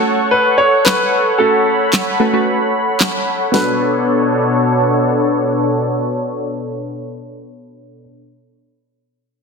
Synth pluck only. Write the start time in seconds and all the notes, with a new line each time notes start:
Already playing: A3 C#4 F#4 A4
1.39 A3 C#4 F#4 A4
2.20 A3 C#4 F#4 B4
2.33 A3 C#4 F#4 B4
3.52 B3 D4 F#4 A4